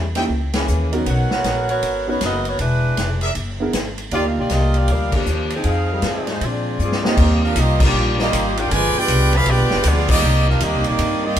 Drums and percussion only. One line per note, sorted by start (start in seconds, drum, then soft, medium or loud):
0.15 snare soft
0.15 ride medium
0.29 kick soft
0.53 snare medium
0.53 ride medium
0.68 hi-hat pedal medium
0.93 ride soft
1.06 kick soft
1.06 ride medium
1.31 snare medium
1.44 kick soft
1.44 snare medium
1.44 hi-hat pedal soft
1.44 ride medium
1.69 ride soft
1.83 kick soft
1.83 ride medium
2.21 kick soft
2.21 snare medium
2.21 hi-hat pedal medium
2.21 ride medium
2.45 ride soft
2.59 kick soft
2.59 ride medium
2.97 kick soft
2.97 snare medium
2.97 hi-hat pedal soft
2.97 ride medium
3.21 ride soft
3.35 kick soft
3.35 ride medium
3.73 kick soft
3.73 snare medium
3.73 hi-hat pedal medium
3.73 ride medium
3.98 ride soft
4.11 kick soft
4.11 ride medium
4.49 kick soft
4.49 snare medium
4.49 hi-hat pedal medium
4.49 ride medium
4.74 ride soft
4.88 kick soft
4.88 ride medium
5.12 kick medium
5.12 crash medium
5.26 hi-hat pedal medium
5.50 ride medium
5.64 kick soft
5.64 ride medium
6.02 kick soft
6.02 snare medium
6.02 hi-hat pedal medium
6.02 ride medium
6.27 snare soft
6.27 ride soft
6.41 kick soft
6.41 ride medium
6.79 hi-hat pedal soft
6.92 snare medium
7.05 snare medium
7.17 kick medium
7.17 crash medium
7.56 kick soft
7.56 hi-hat pedal medium
7.56 ride medium
7.80 kick loud
7.80 crash loud
8.19 snare soft
8.32 kick soft
8.32 hi-hat pedal medium
8.32 ride medium
8.57 ride medium
8.70 kick soft
8.70 ride medium
9.08 kick soft
9.08 hi-hat pedal medium
9.08 ride medium
9.33 ride medium
9.46 kick soft
9.46 ride medium
9.70 snare medium
9.83 kick soft
9.83 hi-hat pedal medium
9.83 ride medium
10.08 kick loud
10.08 crash loud
10.60 kick soft
10.60 hi-hat pedal medium
10.60 ride medium
10.84 ride medium
10.99 kick soft
10.99 ride medium
11.36 hi-hat pedal medium
11.36 ride medium